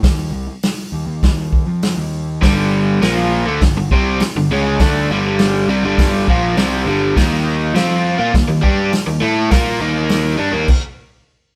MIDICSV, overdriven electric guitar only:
0, 0, Header, 1, 3, 480
1, 0, Start_track
1, 0, Tempo, 595238
1, 27, Time_signature, 4, 2, 24, 8
1, 4346, Tempo, 587659
1, 9381, End_track
2, 0, Start_track
2, 0, Title_t, "Overdriven electric guitar"
2, 0, Program_c, 0, 29
2, 1951, Note_on_c, 0, 43, 88
2, 1954, Note_on_c, 0, 50, 92
2, 1964, Note_on_c, 0, 55, 103
2, 2424, Note_off_c, 0, 43, 0
2, 2426, Note_off_c, 0, 50, 0
2, 2430, Note_on_c, 0, 46, 79
2, 2431, Note_off_c, 0, 55, 0
2, 2436, Note_on_c, 0, 53, 91
2, 2443, Note_on_c, 0, 58, 87
2, 2783, Note_off_c, 0, 46, 0
2, 2786, Note_off_c, 0, 53, 0
2, 2787, Note_on_c, 0, 50, 83
2, 2790, Note_off_c, 0, 58, 0
2, 2796, Note_on_c, 0, 57, 90
2, 2902, Note_off_c, 0, 50, 0
2, 2906, Note_off_c, 0, 57, 0
2, 2915, Note_on_c, 0, 43, 64
2, 2919, Note_on_c, 0, 50, 68
2, 3033, Note_off_c, 0, 43, 0
2, 3033, Note_off_c, 0, 50, 0
2, 3041, Note_on_c, 0, 43, 60
2, 3042, Note_on_c, 0, 50, 75
2, 3152, Note_off_c, 0, 50, 0
2, 3155, Note_on_c, 0, 48, 82
2, 3156, Note_off_c, 0, 43, 0
2, 3165, Note_on_c, 0, 55, 95
2, 3167, Note_on_c, 0, 60, 96
2, 3385, Note_off_c, 0, 48, 0
2, 3390, Note_off_c, 0, 55, 0
2, 3391, Note_off_c, 0, 60, 0
2, 3522, Note_on_c, 0, 43, 65
2, 3524, Note_on_c, 0, 50, 69
2, 3635, Note_off_c, 0, 43, 0
2, 3635, Note_off_c, 0, 50, 0
2, 3638, Note_on_c, 0, 49, 79
2, 3644, Note_on_c, 0, 56, 95
2, 3651, Note_on_c, 0, 61, 100
2, 3865, Note_off_c, 0, 49, 0
2, 3868, Note_off_c, 0, 56, 0
2, 3872, Note_off_c, 0, 61, 0
2, 3873, Note_on_c, 0, 50, 94
2, 3879, Note_on_c, 0, 57, 99
2, 3886, Note_on_c, 0, 62, 93
2, 4102, Note_off_c, 0, 50, 0
2, 4105, Note_off_c, 0, 57, 0
2, 4108, Note_off_c, 0, 62, 0
2, 4117, Note_on_c, 0, 43, 83
2, 4124, Note_on_c, 0, 50, 95
2, 4127, Note_on_c, 0, 55, 101
2, 4585, Note_off_c, 0, 43, 0
2, 4586, Note_off_c, 0, 55, 0
2, 4587, Note_off_c, 0, 50, 0
2, 4590, Note_on_c, 0, 48, 94
2, 4595, Note_on_c, 0, 55, 103
2, 4702, Note_off_c, 0, 48, 0
2, 4704, Note_off_c, 0, 55, 0
2, 4713, Note_on_c, 0, 43, 85
2, 4719, Note_on_c, 0, 50, 89
2, 4724, Note_on_c, 0, 55, 98
2, 5065, Note_off_c, 0, 43, 0
2, 5067, Note_off_c, 0, 50, 0
2, 5070, Note_off_c, 0, 55, 0
2, 5076, Note_on_c, 0, 46, 81
2, 5081, Note_on_c, 0, 53, 95
2, 5089, Note_on_c, 0, 58, 99
2, 5307, Note_off_c, 0, 46, 0
2, 5309, Note_off_c, 0, 53, 0
2, 5311, Note_on_c, 0, 48, 83
2, 5313, Note_off_c, 0, 58, 0
2, 5316, Note_on_c, 0, 55, 91
2, 5317, Note_on_c, 0, 60, 86
2, 5544, Note_off_c, 0, 48, 0
2, 5547, Note_off_c, 0, 55, 0
2, 5547, Note_off_c, 0, 60, 0
2, 5553, Note_on_c, 0, 43, 91
2, 5558, Note_on_c, 0, 50, 86
2, 5559, Note_on_c, 0, 55, 106
2, 5785, Note_off_c, 0, 43, 0
2, 5788, Note_off_c, 0, 50, 0
2, 5788, Note_off_c, 0, 55, 0
2, 5795, Note_on_c, 0, 51, 94
2, 5801, Note_on_c, 0, 58, 93
2, 5804, Note_on_c, 0, 63, 102
2, 6266, Note_off_c, 0, 51, 0
2, 6269, Note_on_c, 0, 53, 86
2, 6270, Note_off_c, 0, 58, 0
2, 6272, Note_off_c, 0, 63, 0
2, 6275, Note_on_c, 0, 60, 89
2, 6282, Note_on_c, 0, 65, 94
2, 6624, Note_off_c, 0, 53, 0
2, 6625, Note_off_c, 0, 60, 0
2, 6628, Note_on_c, 0, 58, 89
2, 6629, Note_off_c, 0, 65, 0
2, 6639, Note_on_c, 0, 65, 102
2, 6741, Note_off_c, 0, 58, 0
2, 6743, Note_on_c, 0, 51, 60
2, 6749, Note_off_c, 0, 65, 0
2, 6751, Note_on_c, 0, 58, 64
2, 6859, Note_off_c, 0, 51, 0
2, 6863, Note_off_c, 0, 58, 0
2, 6869, Note_on_c, 0, 51, 70
2, 6873, Note_on_c, 0, 58, 78
2, 6979, Note_off_c, 0, 58, 0
2, 6982, Note_on_c, 0, 55, 99
2, 6990, Note_on_c, 0, 62, 92
2, 6991, Note_off_c, 0, 51, 0
2, 6996, Note_on_c, 0, 67, 100
2, 7220, Note_off_c, 0, 55, 0
2, 7224, Note_off_c, 0, 62, 0
2, 7227, Note_off_c, 0, 67, 0
2, 7351, Note_on_c, 0, 51, 66
2, 7353, Note_on_c, 0, 58, 70
2, 7459, Note_off_c, 0, 58, 0
2, 7462, Note_on_c, 0, 57, 90
2, 7471, Note_off_c, 0, 51, 0
2, 7473, Note_on_c, 0, 64, 100
2, 7476, Note_on_c, 0, 69, 103
2, 7700, Note_off_c, 0, 57, 0
2, 7705, Note_off_c, 0, 64, 0
2, 7707, Note_off_c, 0, 69, 0
2, 7711, Note_on_c, 0, 58, 87
2, 7715, Note_on_c, 0, 65, 90
2, 7720, Note_on_c, 0, 70, 101
2, 7944, Note_off_c, 0, 58, 0
2, 7946, Note_off_c, 0, 65, 0
2, 7948, Note_off_c, 0, 70, 0
2, 7950, Note_on_c, 0, 51, 88
2, 7960, Note_on_c, 0, 58, 100
2, 7961, Note_on_c, 0, 63, 102
2, 8420, Note_off_c, 0, 58, 0
2, 8422, Note_off_c, 0, 51, 0
2, 8423, Note_on_c, 0, 55, 79
2, 8427, Note_off_c, 0, 63, 0
2, 8430, Note_on_c, 0, 62, 96
2, 8538, Note_off_c, 0, 55, 0
2, 8540, Note_on_c, 0, 51, 82
2, 8542, Note_off_c, 0, 62, 0
2, 8548, Note_on_c, 0, 58, 88
2, 8657, Note_off_c, 0, 51, 0
2, 8661, Note_off_c, 0, 58, 0
2, 9381, End_track
3, 0, Start_track
3, 0, Title_t, "Muted overdriven electric guitar strokes"
3, 3393, Note_on_c, 9, 29, 55
3, 3474, Note_off_c, 9, 29, 0
3, 7233, Note_on_c, 9, 29, 54
3, 7314, Note_off_c, 9, 29, 0
3, 9381, End_track
0, 0, End_of_file